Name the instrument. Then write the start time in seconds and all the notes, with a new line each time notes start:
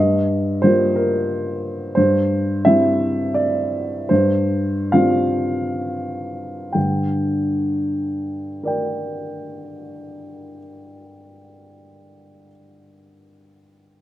upright piano
Already playing: G2 D#5
0.62 G3 A#3 F4 C5
0.96 A#4
1.95 G2 C5
2.65 G3 C4 E4 E5
3.34 D5
4.09 G2 C5
4.92 G3 C4 F4 F5
6.72 G2 D3 G5
8.63 A#4 D5 G5